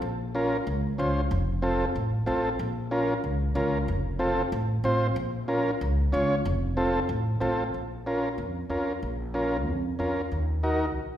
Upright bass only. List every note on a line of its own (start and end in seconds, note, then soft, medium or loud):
0.02 0.53 A#1 loud
0.67 0.92 C#2 loud
0.99 1.25 C#2 loud
1.31 1.82 F1 loud
1.96 2.21 A1 medium
2.27 2.53 A1 medium
2.59 3.11 A#1 loud
3.24 3.50 C#2 medium
3.55 3.81 C#2 loud
3.88 4.40 F1 loud
4.52 4.78 A1 loud
4.84 5.10 A1 loud
5.16 5.68 A#1 loud
5.81 6.07 C#2 loud
6.14 6.39 C#2 loud
6.45 6.97 F1 loud
7.09 7.35 A1 loud
7.41 7.67 A1 loud
7.74 8.39 A#1 medium
8.38 8.64 F2 medium
8.70 8.96 F2 medium
9.03 9.67 A#1 medium
9.67 9.93 F2 medium
9.99 10.25 F2 medium
10.32 10.95 D#2 medium
10.95 11.17 A#1 medium